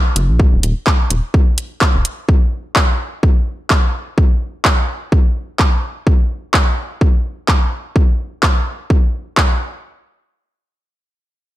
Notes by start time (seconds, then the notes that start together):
0.16 F#1, closed hi-hat
0.29 A#1
0.40 kick
0.53 D#1
0.63 D#1, closed hi-hat
0.87 kick, clap
1.10 D#1, closed hi-hat
1.34 kick
1.58 closed hi-hat
1.81 kick, clap
1.95 D#1
2.05 closed hi-hat
2.29 kick
2.76 kick, clap
3.23 kick
3.70 kick, clap
4.18 kick
4.65 kick, clap
5.12 kick
5.59 kick, clap
6.07 kick
6.54 kick, clap
7.01 kick
7.48 kick, clap
7.96 kick
8.43 kick, clap
8.90 kick
9.37 kick, clap